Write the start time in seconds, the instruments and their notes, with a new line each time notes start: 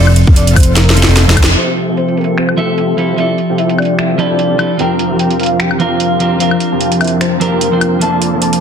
Already playing: analog synth bass F1, clean electric guitar F3 C4, supersaw synth C4 E4 F4 A4 C5, soft synth lead D5
0.00 clean electric guitar A4
0.07 high woodblock
0.16 closed hi-hat
0.27 analog synth bass F1, supersaw synth C4 E4 F4 A4 F5, kick
0.36 soft synth lead D5, closed hi-hat
0.47 closed hi-hat
0.56 soft synth lead C5, kick, closed hi-hat, open hi-hat, high woodblock
0.63 closed hi-hat
0.77 soft synth lead A#4, snare, closed hi-hat
0.90 snare
0.96 clean electric guitar F3 C4 E4 A4, soft synth lead A4, closed hi-hat
1.03 snare
1.08 analog synth bass F1, supersaw synth C4 E4 F4 A4 C5
1.17 snare, closed hi-hat
1.27 analog synth bass F1, clean electric guitar F3 C4 E4 C5, supersaw synth C4 E4 F4 A4 E5, snare
1.37 kick, closed hi-hat, high woodblock
1.44 snare
1.55 clean electric guitar F3 G4 A4 E5, supersaw synth C4 F4 G4 A4 E5, soft synth lead C5, closed hi-hat
1.77 closed hi-hat
1.88 supersaw synth C4 F4 G4 A4 E5
1.97 soft synth lead C5, closed hi-hat
2.08 closed hi-hat
2.17 soft synth lead A#4, closed hi-hat
2.21 closed hi-hat
2.24 closed hi-hat
2.37 supersaw synth C4 F4 G4 A4 F5, soft synth lead C5, finger snap, closed hi-hat
2.49 high woodblock
2.57 clean electric guitar F3 G4 A4 E5, supersaw synth C4 F4 G4 A4 E5, soft synth lead A4, closed hi-hat
2.78 closed hi-hat
2.97 clean electric guitar F3 E4 G4 A4, closed hi-hat
3.16 clean electric guitar F3 G4 A4 E5, supersaw synth C4 F4 G4 A4 D5, soft synth lead E5, closed hi-hat
3.38 closed hi-hat
3.49 supersaw synth C4 F4 G4 A4 G5
3.58 soft synth lead E5, closed hi-hat
3.69 closed hi-hat
3.78 soft synth lead D5, closed hi-hat, high woodblock
3.82 closed hi-hat
3.85 closed hi-hat
3.99 soft synth lead E5, finger snap, closed hi-hat
4.18 clean electric guitar F3 E4 G4 A4, soft synth lead D5, closed hi-hat
4.30 supersaw synth C4 F4 G4 A4 D5
4.39 closed hi-hat
4.50 supersaw synth C4 F4 G4 A4 F5
4.58 clean electric guitar F3 E4 G4 A4, closed hi-hat, high woodblock
4.77 clean electric guitar F3 C4 D4 A#4, supersaw synth F3 C4 F4 G4 A#4 F5, soft synth lead G5, closed hi-hat
4.99 closed hi-hat
5.10 supersaw synth F3 C4 F4 G4 A#4 F5
5.19 soft synth lead G5, closed hi-hat
5.31 closed hi-hat
5.40 soft synth lead F5, closed hi-hat
5.43 closed hi-hat
5.46 closed hi-hat
5.60 supersaw synth F3 C4 F4 G4 A#4 G5, soft synth lead G5, finger snap, closed hi-hat
5.71 high woodblock
5.79 clean electric guitar F3 C4 D4 A#4, supersaw synth F3 C4 F4 G4 A#4 F5, soft synth lead F5, closed hi-hat
6.00 closed hi-hat
6.19 clean electric guitar F3 C4 D4 A#4, closed hi-hat
6.38 clean electric guitar F3 C4 D4, supersaw synth F3 C4 F4 G4 A#4 E5, soft synth lead F5, closed hi-hat
6.42 clean electric guitar A#4
6.51 high woodblock
6.60 closed hi-hat
6.72 supersaw synth F3 C4 F4 G4 A#4 A5
6.80 soft synth lead F5, closed hi-hat
6.92 closed hi-hat
7.01 soft synth lead E5, closed hi-hat, high woodblock
7.04 closed hi-hat
7.07 closed hi-hat
7.21 soft synth lead C5, finger snap, closed hi-hat
7.40 clean electric guitar F3 C4 D4 A#4, soft synth lead A#4, closed hi-hat
7.52 supersaw synth F3 C4 F4 G4 A#4 F5
7.61 closed hi-hat
7.71 clean electric guitar F3 C4 D4 C5, supersaw synth F3 C4 F4 G4 A#4 F5
7.81 closed hi-hat, high woodblock
7.99 clean electric guitar F3 A#3 D4, supersaw synth F3 C4 F4 A4 A#4 D5, soft synth lead A5, closed hi-hat
8.03 clean electric guitar A5
8.22 closed hi-hat
8.33 supersaw synth F3 C4 F4 A4 A#4 D5
8.42 soft synth lead A5, closed hi-hat
8.53 closed hi-hat